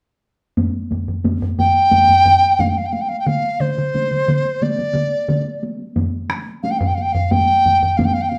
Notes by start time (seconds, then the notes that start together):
0.57 taiko low-mid, taiko high
0.74 taiko high
0.91 taiko low-mid, taiko high
1.08 taiko low-mid, taiko high
1.24 taiko low-mid, taiko high
1.42 taiko low-mid, taiko high
1.58 G5, taiko low-mid, taiko high
1.75 taiko high
1.92 taiko low-mid, taiko high
2.09 taiko low-mid, taiko high
2.25 taiko low-mid, taiko high
2.59 F5, taiko low-mid, taiko high
2.69 G5
2.77 F5, taiko high
2.86 G5
2.92 F5, taiko high
3.01 G5
3.09 F5, taiko high
3.20 G5
3.27 F5, taiko mid, taiko high
3.45 taiko high
3.60 C5, taiko mid, taiko high
3.78 taiko mid, taiko high
3.94 taiko mid, taiko high
4.11 taiko mid, taiko high
4.28 taiko mid, taiko high
4.46 taiko high
4.62 D5, taiko mid, taiko high
4.79 taiko mid, taiko high
4.95 taiko mid, taiko high
5.28 taiko mid, taiko high
5.46 taiko high
5.63 taiko high
5.80 taiko high
5.96 taiko low-mid, taiko high
6.13 taiko high
6.29 taiko rim, taiko high
6.47 taiko high
6.63 F5, taiko high
6.71 G5
6.79 F5, taiko low-mid, taiko high
6.87 G5
6.95 F5, taiko high
7.02 G5
7.13 F5, taiko low-mid, taiko high
7.31 G5, taiko low-mid, taiko high
7.49 taiko high
7.66 taiko low-mid, taiko high
7.83 taiko low-mid
7.97 F5, taiko low-mid, taiko high
8.05 G5
8.14 F5, taiko high
8.22 G5
8.29 F5, taiko high